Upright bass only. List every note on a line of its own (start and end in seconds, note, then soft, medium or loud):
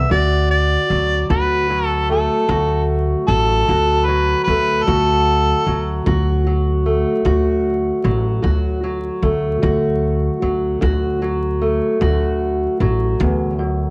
0.11 0.75 D2 loud
0.90 1.23 D2 medium
1.30 2.27 D2 loud
2.49 3.13 D2 loud
3.28 3.60 A1 loud
3.69 4.33 D2 loud
4.48 4.80 D2 loud
4.88 5.52 D2 loud
5.67 5.99 D2 medium
6.07 7.03 D2 loud
7.25 7.89 D2 loud
8.05 8.37 A1 loud
8.44 9.08 D2 medium
9.22 9.55 D2 loud
9.63 10.27 D2 loud
10.42 10.74 D2 medium
10.82 11.78 D2 loud
12.01 12.65 D2 loud
12.80 13.12 A1 loud
13.20 13.84 D2 loud